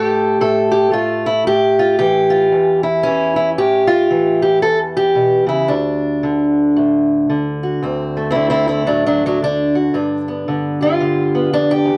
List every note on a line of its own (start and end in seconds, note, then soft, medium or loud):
0.00 0.40 A2 medium
0.00 0.91 A3 medium
0.00 0.02 F#4 medium
0.00 0.70 G4 medium
0.00 0.40 A4 loud
0.41 1.47 A2 medium
0.41 1.26 A4 medium
0.72 0.93 G4 loud
0.92 1.50 A3 medium
0.92 1.25 F4 medium
1.26 1.47 E4 medium
1.47 2.53 A2 medium
1.47 1.97 G4 loud
1.79 2.00 F4 medium
1.99 3.05 E3 medium
1.99 2.83 G4 medium
2.30 2.84 F4 medium
2.52 3.56 E2 medium
2.83 3.35 E4 medium
3.03 3.56 E3 medium
3.03 3.87 C#4 medium
3.36 3.49 E4 medium
3.58 4.65 A2 medium
3.58 4.41 G4 medium
3.87 4.42 F4 medium
4.11 5.68 E3 medium
4.42 4.62 G4 medium
4.62 5.68 E2 medium
4.62 4.78 A4 loud
4.97 5.48 G4 medium
5.15 5.46 B2 medium
5.46 5.69 C#3 medium
5.46 5.70 E4 medium
5.68 7.81 D2 medium
5.68 7.82 D4 medium
6.23 7.28 D3 medium
6.76 7.30 A2 medium
7.30 8.34 D3 medium
7.63 7.81 F#4 soft
7.82 9.93 D2 medium
7.82 8.29 C4 soft
8.17 8.69 A3 soft
8.31 8.49 C4 medium
8.31 8.49 E4 medium
8.35 8.86 D3 medium
8.50 8.66 C4 medium
8.50 8.68 E4 medium
8.67 9.94 A3 soft
8.67 8.87 C4 medium
8.67 8.88 E4 medium
8.86 9.42 A2 medium
8.86 9.05 F#3 medium
8.86 9.05 D4 medium
9.06 9.24 F#3 medium
9.06 9.24 D4 medium
9.26 9.42 F#3 medium
9.26 9.43 D4 medium
9.42 10.47 D3 medium
9.42 9.75 D4 medium
9.75 9.93 F#4 soft
9.94 11.52 G2 medium
9.94 10.82 D4 medium
10.28 11.34 B3 soft
10.48 11.00 D3 medium
10.81 11.53 F4 medium
10.81 11.70 G4 soft
11.00 11.97 D3 medium
11.35 11.97 B3 soft
11.53 11.85 F2 medium
11.53 11.72 D4 medium
11.71 11.97 G4 medium
11.85 11.97 E2 medium